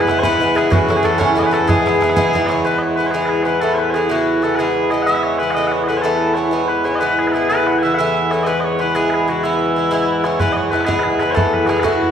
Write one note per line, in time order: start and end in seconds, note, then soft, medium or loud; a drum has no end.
0.00 12.11 E2 medium
0.00 12.11 E3 medium
0.00 0.09 B4 medium
0.07 0.22 G#2 medium
0.07 0.23 E3 medium
0.07 0.24 B3 medium
0.07 0.24 E4 medium
0.07 0.19 B4 loud
0.07 bodhran medium
0.19 0.23 C#5 loud
0.23 0.39 G#2 medium
0.23 0.40 E3 medium
0.23 0.41 B3 loud
0.23 0.42 E4 medium
0.23 0.56 B4 loud
0.23 bodhran medium
0.40 0.54 G#2 medium
0.40 0.55 E3 medium
0.40 0.56 B3 medium
0.40 0.57 E4 medium
0.40 bodhran soft
0.55 0.70 G#2 medium
0.55 0.70 E3 medium
0.55 0.72 B3 medium
0.55 0.72 E4 medium
0.55 0.71 G#4 medium
0.55 bodhran medium
0.70 0.87 A2 medium
0.70 0.88 E3 medium
0.70 0.89 C#4 medium
0.70 0.90 E4 medium
0.70 0.96 F#4 medium
0.70 bodhran medium
0.88 1.01 A2 medium
0.88 1.03 E3 medium
0.88 1.04 C#4 medium
0.88 1.05 E4 medium
0.88 bodhran medium
0.96 1.05 G#4 medium
1.03 1.17 A2 medium
1.03 1.17 E3 medium
1.03 1.18 C#4 medium
1.03 1.20 E4 medium
1.03 1.19 A4 loud
1.03 bodhran medium
1.18 1.34 A2 medium
1.18 1.35 E3 medium
1.18 1.36 C#4 loud
1.18 1.37 E4 loud
1.18 1.39 C#5 loud
1.18 bodhran medium
1.35 1.50 A2 medium
1.35 1.51 E3 medium
1.35 1.53 C#4 medium
1.35 1.53 E4 medium
1.35 1.43 D#5 medium
1.35 bodhran soft
1.44 1.53 B4 medium
1.51 1.67 A2 medium
1.51 1.67 E3 medium
1.51 1.68 C#4 medium
1.51 1.68 E4 medium
1.51 1.69 A4 loud
1.51 bodhran medium
1.67 1.85 G#2 medium
1.67 1.85 E3 medium
1.67 1.86 B3 medium
1.67 1.86 E4 medium
1.67 2.46 G#4 medium
1.67 bodhran medium
1.86 1.99 G#2 medium
1.86 2.00 E3 medium
1.86 2.02 B3 medium
1.86 2.03 E4 medium
1.86 bodhran medium
2.01 2.15 G#2 medium
2.01 2.15 E3 medium
2.01 2.16 B3 medium
2.01 2.17 E4 medium
2.01 bodhran medium
2.10 bodhran medium
2.16 2.32 G#2 medium
2.16 2.34 E3 loud
2.16 2.35 B3 loud
2.16 2.35 E4 loud
2.16 bodhran medium
2.33 2.47 G#2 medium
2.33 2.49 E3 medium
2.33 2.50 B3 medium
2.33 2.51 E4 medium
2.33 bodhran soft
2.46 2.63 G#2 medium
2.46 2.65 E3 medium
2.46 2.65 C#5 medium
2.46 2.50 D#5 medium
2.46 bodhran medium
2.51 2.66 B3 medium
2.51 2.66 E4 medium
2.65 2.96 G#2 medium
2.65 2.98 E3 medium
2.65 2.99 B3 medium
2.65 3.00 E4 medium
2.65 2.78 B4 medium
2.78 2.96 C#5 medium
2.78 2.82 D#5 medium
2.96 3.13 G#2 soft
2.96 3.13 E3 medium
2.96 3.13 B3 medium
2.96 3.06 B4 medium
3.00 3.14 E4 medium
3.06 3.11 C#5 medium
3.11 3.44 G#2 medium
3.11 3.46 E3 medium
3.11 3.48 B3 medium
3.11 3.25 G#4 medium
3.16 3.49 E4 medium
3.25 3.43 G#4 medium
3.25 3.29 B4 medium
3.43 3.61 G#2 medium
3.43 3.61 E3 medium
3.43 3.60 B4 medium
3.43 3.46 C#5 medium
3.48 3.62 B3 medium
3.48 3.62 E4 medium
3.60 3.93 A2 medium
3.60 3.95 E3 medium
3.60 3.96 B3 medium
3.60 3.97 E4 medium
3.60 3.74 A4 loud
3.74 3.79 C#5 medium
3.79 3.90 B4 medium
3.90 4.08 A2 medium
3.90 4.11 G#4 medium
3.90 3.94 C#5 medium
3.96 4.09 E3 medium
3.96 4.10 B3 medium
3.96 4.10 E4 medium
4.09 4.41 A2 medium
4.09 4.42 E3 medium
4.09 4.44 B3 medium
4.09 4.44 E4 medium
4.09 4.43 F#4 medium
4.42 4.58 A2 soft
4.42 4.58 E3 soft
4.42 4.59 B3 medium
4.42 4.59 E4 medium
4.42 4.55 A4 medium
4.55 4.90 G#2 medium
4.55 4.91 G#4 medium
4.55 4.59 B4 medium
4.60 4.91 E3 medium
4.60 4.93 B3 medium
4.60 4.94 E4 medium
4.91 5.06 G#2 soft
4.91 5.07 E3 medium
4.91 5.08 B3 medium
4.91 5.08 E4 medium
4.91 5.02 D#5 medium
5.02 5.23 E5 medium
5.02 5.06 F#5 medium
5.07 5.39 G#2 medium
5.07 5.41 E3 medium
5.07 5.42 B3 medium
5.07 5.43 E4 medium
5.23 5.38 C#5 medium
5.38 5.55 G#2 medium
5.38 5.55 E3 medium
5.38 5.51 B4 medium
5.43 5.56 B3 medium
5.43 5.57 E4 medium
5.51 5.68 D#5 loud
5.51 5.54 F#5 loud
5.56 5.87 A2 medium
5.56 5.89 E3 medium
5.56 5.90 B3 medium
5.56 5.92 E4 medium
5.68 5.83 C#5 medium
5.68 5.71 F#5 medium
5.83 5.88 D#5 medium
5.88 6.02 A2 medium
5.88 6.03 E3 medium
5.88 6.04 B3 medium
5.88 5.97 B4 medium
5.92 6.04 E4 medium
5.97 6.01 C#5 medium
6.01 6.34 A2 medium
6.01 6.36 E3 medium
6.01 6.37 B3 medium
6.01 6.34 A4 medium
6.06 6.38 E4 medium
6.34 6.51 A2 soft
6.34 6.51 E3 medium
6.34 6.52 B3 medium
6.34 6.68 C#5 medium
6.38 6.52 E4 medium
6.51 6.83 G#2 medium
6.51 6.85 E3 medium
6.51 6.86 B3 medium
6.51 6.87 E4 medium
6.68 6.85 B4 medium
6.84 6.99 G#2 medium
6.84 7.01 E3 medium
6.84 7.01 B3 medium
6.84 7.02 E4 medium
6.84 6.95 C#5 medium
6.95 6.99 D#5 medium
6.99 7.32 G#2 medium
6.99 7.34 E3 medium
6.99 7.35 B3 medium
6.99 7.36 E4 medium
6.99 7.19 B4 medium
7.19 7.27 G#4 medium
7.27 7.32 B4 medium
7.32 7.49 G#2 soft
7.32 7.49 E3 medium
7.32 7.50 B3 medium
7.32 7.49 G#4 loud
7.32 7.34 A4 medium
7.37 7.50 E4 medium
7.49 7.82 A2 medium
7.49 7.84 E3 medium
7.49 7.85 B3 medium
7.49 7.86 E4 medium
7.49 7.67 B4 loud
7.67 7.78 F#5 medium
7.78 7.83 G#5 loud
7.83 7.97 A2 medium
7.83 7.98 E3 medium
7.83 7.99 B3 medium
7.83 7.99 E4 medium
7.83 7.94 E5 loud
7.94 8.31 E5 loud
7.94 7.98 F#5 loud
7.99 8.30 A2 medium
7.99 8.32 E3 medium
7.99 8.33 B3 medium
7.99 8.34 E4 medium
8.31 8.46 A2 medium
8.31 8.46 E3 medium
8.31 8.47 B3 medium
8.31 8.48 E4 medium
8.31 8.43 C#5 loud
8.43 8.77 G#2 medium
8.43 8.47 D#5 medium
8.47 8.79 E3 medium
8.47 8.80 B3 medium
8.47 8.81 E4 medium
8.47 8.60 B4 medium
8.60 8.64 D#5 medium
8.64 8.80 C#5 medium
8.79 8.94 G#2 medium
8.79 8.94 E3 medium
8.79 8.95 B3 medium
8.79 8.95 E4 medium
8.79 8.95 B4 medium
8.95 9.26 G#2 medium
8.95 9.28 E3 medium
8.95 9.29 B3 medium
8.95 9.30 E4 medium
8.95 9.10 G#4 medium
9.10 9.29 G#4 medium
9.10 9.14 B4 medium
9.28 9.42 G#2 medium
9.28 9.43 E3 medium
9.28 9.44 B3 medium
9.28 9.44 E4 medium
9.28 9.44 F#4 medium
9.44 9.75 G#2 medium
9.44 9.77 E3 medium
9.44 9.78 B3 medium
9.44 10.25 E4 medium
9.44 9.79 E4 medium
9.76 9.90 G#2 medium
9.76 9.90 E3 soft
9.76 9.91 B3 medium
9.76 9.92 E4 medium
9.91 10.22 G#2 medium
9.91 10.24 E3 medium
9.91 10.26 B3 medium
9.91 10.26 E4 loud
10.24 10.38 G#2 medium
10.24 10.39 E3 medium
10.24 10.39 B3 medium
10.24 10.40 E4 medium
10.24 10.40 C#5 medium
10.40 10.71 G#2 medium
10.40 10.73 E3 medium
10.40 10.74 B3 medium
10.40 10.75 E4 medium
10.40 10.52 B4 loud
10.40 bodhran medium
10.52 10.56 D#5 medium
10.56 10.71 C#5 medium
10.71 10.85 G#2 medium
10.71 10.86 E3 medium
10.71 10.87 B3 medium
10.71 10.85 B4 medium
10.71 bodhran medium
10.75 10.87 E4 medium
10.81 bodhran medium
10.85 11.18 G#2 medium
10.85 11.20 E3 medium
10.85 11.22 B3 medium
10.85 11.23 E4 medium
10.85 10.99 G#4 medium
10.85 bodhran medium
10.99 11.03 B4 medium
11.03 11.19 G#4 medium
11.03 bodhran soft
11.19 11.34 G#2 medium
11.19 11.35 E3 medium
11.19 11.35 B3 medium
11.19 11.36 E4 medium
11.19 11.31 B4 medium
11.19 bodhran medium
11.31 11.66 A2 medium
11.31 11.53 A4 medium
11.31 11.35 C#5 medium
11.36 11.68 E3 medium
11.36 11.69 B3 medium
11.36 11.70 E4 medium
11.36 bodhran medium
11.53 11.66 B4 medium
11.66 11.82 A2 medium
11.66 11.83 E3 medium
11.66 11.83 B3 medium
11.66 11.68 F#4 medium
11.66 11.80 G#4 medium
11.66 bodhran medium
11.70 11.84 E4 medium
11.77 11.83 B4 medium
11.77 bodhran medium
11.83 12.11 A2 medium
11.83 12.11 E3 medium
11.83 12.11 B3 medium
11.83 12.11 E4 medium
11.83 12.11 F#4 medium
11.83 bodhran medium
12.03 bodhran soft